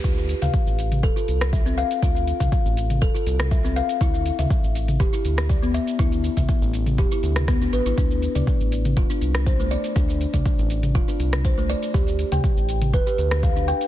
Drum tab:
HH |x-oxx-oxx-oxx-ox|x-oxx-oxx-oxx-ox|x-oxx-oxx-oxx-ox|xooxx-oxx-oxx-ox|
SH |xxxxxxxxxxxxxxxx|xxxxxxxxxxxxxxxx|xxxxxxxxxxxxxxxx|xxxxxxxxxxxxxxxx|
SD |-----------r----|-----------r----|-----------r----|-----------rr---|
T2 |---o---o--------|---o---o---o----|---o---o--------|---o---o---o----|
BD |o---o---o---o---|o--oo---o---o---|o---o---o---o---|o--oo---o---o---|

HH |x-oxx-oxx-oxx-ox|x-oxx-oxx-oxx-ox|x-oxx-oxx-oxx-ox|
SH |xxxxxxxxxxxxxxxx|xxxxxxxxxxxxxxxx|xxxxxxxxxxxxxxxx|
SD |-----------r----|-----------r----|-----------r----|
T2 |---o---o--------|---o---o---o----|---o---o--------|
BD |o---o---o---o---|o--oo---o---o---|o---o---o---o---|